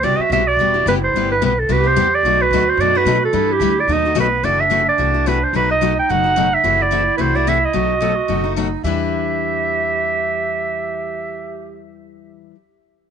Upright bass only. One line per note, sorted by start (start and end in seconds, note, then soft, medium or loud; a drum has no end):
0.04 0.18 C2 medium
0.18 muted upright bass stroke soft
0.30 0.56 B1 medium
0.56 0.84 E1 medium
0.86 1.13 F#1 medium
1.14 1.40 G1 medium
1.42 1.68 B1 medium
1.69 1.96 C2 medium
1.96 2.23 E2 medium
2.23 2.50 B1 medium
2.51 2.77 D2 medium
2.77 3.05 F#2 medium
3.05 3.32 B2 loud
3.33 3.59 G2 medium
3.60 3.87 D2 medium
3.88 4.15 D#2 medium
4.15 4.42 B1 medium
4.43 4.87 F#1 medium
4.98 5.43 C2 medium
5.53 5.97 B1 medium
6.10 6.53 F#1 medium
6.64 7.08 F#1 medium
7.19 7.63 C2 medium
7.74 8.18 B1 medium
8.29 8.73 F#1 medium
8.83 12.50 E2 medium